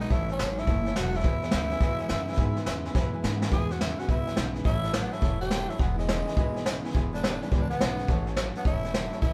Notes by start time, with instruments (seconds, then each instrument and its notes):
Already playing: upright bass B1
0.00 steel-string acoustic guitar B3 D#4 F#4, tenor saxophone D#4, upright piano F#5, snare
0.08 upright bass A1, steel-string acoustic guitar A2 E3 A3 C#4 E4, clean electric guitar A2 E3, tenor saxophone E4, upright piano C#5 E5 A5, kick, snare
0.27 steel-string acoustic guitar A3 C#4 E4, upright piano C#5 A5, snare
0.32 tenor saxophone C#4
0.37 upright bass G#1, clean electric guitar A2 F#3, steel-string acoustic guitar E3 A3 C#4, upright piano C#5 E5 A5, snare, hi-hat pedal
0.56 steel-string acoustic guitar A3 C#4 E4, tenor saxophone E4, upright piano C#5 E5 A5, snare
0.66 upright bass F#1, steel-string acoustic guitar A2 E3 A3 C#4 E4, clean electric guitar A2 E3, upright piano C#5 E5 A5, kick, snare
0.85 steel-string acoustic guitar A3 C#4 E4, upright piano C#5 E5 A5, snare
0.94 upright bass E1, clean electric guitar A2 F#3, steel-string acoustic guitar E3 A3 E4, tenor saxophone F#4, upright piano C#5 E5 A5, snare, hi-hat pedal
1.13 steel-string acoustic guitar A3 C#4 E4, tenor saxophone E4, upright piano C#5 E5 A5, snare
1.19 upright piano B4, snare
1.23 upright bass E2, steel-string acoustic guitar E2 B2 E3 G#3 B3 E4, clean electric guitar E2 B2, upright piano E5 G#5, kick, snare
1.42 steel-string acoustic guitar E3 G#3 B3 E4, upright piano B4 E5 G#5, snare
1.51 upright bass D2, clean electric guitar E2 C#3, steel-string acoustic guitar E3 G#3 B3 E4, upright piano B4 G#5, snare, hi-hat pedal
1.70 steel-string acoustic guitar E3 G#3 B3 E4, upright piano B4 E5 G#5, snare
1.80 steel-string acoustic guitar E2 B2 E3 G#3 B3 E4, upright bass E2, clean electric guitar E2 B2, upright piano B4 E5 G#5, kick, snare
1.99 steel-string acoustic guitar E3 G#3 B3 E4, upright piano B4 E5 G#5, snare
2.09 clean electric guitar E2 C#3, upright bass F#2, steel-string acoustic guitar E3 G#3 B3 E4, upright piano B4 G#5, snare, hi-hat pedal
2.27 steel-string acoustic guitar E3 G#3 B3 E4, upright piano B4 E5 G#5, snare
2.33 steel-string acoustic guitar E2, snare
2.37 clean electric guitar E2 B2, upright bass G#2, steel-string acoustic guitar B2 E3 G#3 B3 E4, upright piano B4 E5 G#5, kick, snare
2.55 steel-string acoustic guitar E3 G#3 B3 E4, upright piano B4 E5 G#5, snare
2.65 clean electric guitar E2 C#3, upright bass E2, steel-string acoustic guitar E3 G#3 B3 E4, upright piano B4 E5 G#5, snare, hi-hat pedal
2.84 steel-string acoustic guitar E3 G#3 B3 E4, upright piano B4 E5 G#5, snare
2.94 steel-string acoustic guitar E2 B2 E3 G#3 B3 E4, clean electric guitar E2 B2, upright bass F#2, upright piano B4 E5 G#5, kick, snare
3.13 steel-string acoustic guitar E3 G#3 B3 E4, upright piano B4 E5 G#5
3.22 clean electric guitar E2 C#3, upright bass G#2, steel-string acoustic guitar E3 G#3 B3 E4, upright piano B4 E5 G#5, snare, hi-hat pedal
3.41 steel-string acoustic guitar E3 G#3 B3 E4, upright piano B4 E5 G#5, snare
3.51 steel-string acoustic guitar E2 B2 E3 G#3 B3 E4, upright bass E2, clean electric guitar E2 B2, tenor saxophone G#4, upright piano B4 E5 G#5, kick, snare
3.69 steel-string acoustic guitar E3 G#3 B3 E4, tenor saxophone F#4, upright piano B4 E5 G#5, snare
3.80 clean electric guitar E2 C#3, steel-string acoustic guitar E3 G#3 B3 E4, tenor saxophone E4, upright piano B4 E5 G#5, snare, hi-hat pedal
3.98 steel-string acoustic guitar E3 G#3 B3 E4, tenor saxophone F#4, upright piano B4 E5 G#5, snare
4.08 upright bass C#2, steel-string acoustic guitar E2 B2 E3 G#3 B3 E4, clean electric guitar E2 B2, tenor saxophone E4, upright piano B4 E5 B5, kick, snare
4.25 steel-string acoustic guitar E3 G#3 B3 E4, upright piano B4 E5 G#5, snare
4.36 upright bass B1, clean electric guitar E2 C#3, steel-string acoustic guitar E3 G#3 B3 E4, upright piano B4 E5 B5, snare, hi-hat pedal
4.53 steel-string acoustic guitar E3 G#3 B3 E4, upright piano B4 E5 G#5, snare
4.64 upright bass A1, steel-string acoustic guitar A2 E3 A3 C#4 E4, clean electric guitar A2 E3, tenor saxophone E4, upright piano C#5 E5 A5, kick, snare
4.82 steel-string acoustic guitar A3 C#4 E4, upright piano C#5 E5 A5, snare
4.92 clean electric guitar A2 F#3, steel-string acoustic guitar E3 A3 C#4 E4, tenor saxophone B3, upright piano C#5 E5 A5, snare, hi-hat pedal
5.10 steel-string acoustic guitar A3 C#4 E4, tenor saxophone E4, upright piano C#5 E5 A5, snare
5.20 upright bass E1, steel-string acoustic guitar A2 E3 A3 C#4 E4, clean electric guitar A2 E3, upright piano C#5 E5 A5, kick, snare
5.38 steel-string acoustic guitar A3 C#4 E4, tenor saxophone G4, upright piano C#5 E5 A5, snare
5.48 clean electric guitar A2, steel-string acoustic guitar E3 A3 C#4 E4, upright piano C#5 E5 A5, snare, hi-hat pedal
5.52 clean electric guitar F#3
5.67 steel-string acoustic guitar A3 C#4 E4, tenor saxophone E4, upright piano C#5 E5 A5, snare
5.77 upright bass E1, steel-string acoustic guitar E2 B2 E3 G#3 B3 E4, clean electric guitar E2, tenor saxophone B3, upright piano B4 E5 G#5, kick, snare
5.82 clean electric guitar B2
5.96 steel-string acoustic guitar E3 G#3 B3 E4, tenor saxophone G#3, upright piano B4 E5 G#5, snare
6.06 clean electric guitar E2, steel-string acoustic guitar E3 G#3 B3 E4, upright piano B4 E5 G#5, snare, hi-hat pedal
6.10 clean electric guitar C#3
6.25 steel-string acoustic guitar E3 G#3 B3 E4, upright piano B4 E5 G#5, snare
6.34 upright bass B1, steel-string acoustic guitar E2 B2 E3 G#3 B3 E4, upright piano B4 E5 G#5, kick, snare
6.38 clean electric guitar E2 B2
6.53 steel-string acoustic guitar E3 G#3 B3 E4, upright piano B4 E5 G#5, snare
6.63 clean electric guitar E2, steel-string acoustic guitar E3 G#3 E4, upright piano B4 E5 G#5, snare, hi-hat pedal
6.67 clean electric guitar C#3
6.82 steel-string acoustic guitar E3 G#3 B3 E4, upright piano B4 E5 G#5, snare
6.90 steel-string acoustic guitar E2 B2 E3, snare
6.94 upright bass E1, clean electric guitar E2 B2, steel-string acoustic guitar G#3 B3 E4, upright piano B4 E5 G#5, kick, snare
7.12 steel-string acoustic guitar E3 G#3 B3 E4, tenor saxophone D4, upright piano B4 E5 G#5, snare
7.22 clean electric guitar E2 C#3, steel-string acoustic guitar E3 G#3 B3 E4, tenor saxophone G3, upright piano B4 G#5, snare, hi-hat pedal
7.33 tenor saxophone D4
7.40 steel-string acoustic guitar E3 G#3 B3 E4, tenor saxophone D4, upright piano B4 E5 G#5, snare
7.51 upright bass C#2, steel-string acoustic guitar E2 B2 E3 G#3 B3 E4, clean electric guitar E2 B2, tenor saxophone G3, upright piano B4 E5 G#5, kick, snare
7.61 tenor saxophone D4
7.69 steel-string acoustic guitar E3 G#3 B3 E4, tenor saxophone B3, upright piano B4 E5 G#5, snare
7.79 upright bass B1, clean electric guitar E2 C#3, steel-string acoustic guitar E3 G#3, upright piano B4 G#5, snare, hi-hat pedal
7.97 steel-string acoustic guitar E3 G#3 B3 E4, upright piano B4 E5 G#5, snare
8.07 upright bass A1, steel-string acoustic guitar A2 E3 A3 C#4 E4, clean electric guitar A2 E3, upright piano C#5 E5 A5, kick, snare
8.26 steel-string acoustic guitar A3 C#4 E4, upright piano C#5 E5 A5, snare
8.35 clean electric guitar A2 F#3, steel-string acoustic guitar E3 A3 C#4, upright piano C#5 E5 A5, snare, hi-hat pedal
8.52 steel-string acoustic guitar A3 C#4 E4, upright piano C#5 E5, snare
8.57 tenor saxophone B3, upright piano A5
8.63 upright bass E1, steel-string acoustic guitar A2 E3 A3 C#4 E4, clean electric guitar A2 E3, tenor saxophone E4, upright piano C#5 E5 A5, kick, snare
8.82 steel-string acoustic guitar A3 C#4 E4, upright piano C#5 E5 A5, snare
8.92 clean electric guitar A2 F#3, steel-string acoustic guitar E3 A3 C#4, upright piano C#5 A5, snare, hi-hat pedal
9.11 steel-string acoustic guitar A3 C#4 E4, upright piano C#5 E5 A5, snare
9.21 upright bass A1, steel-string acoustic guitar A2 E3 A3 C#4 E4, clean electric guitar A2 E3, tenor saxophone E4, upright piano C#5 E5 A5, kick, snare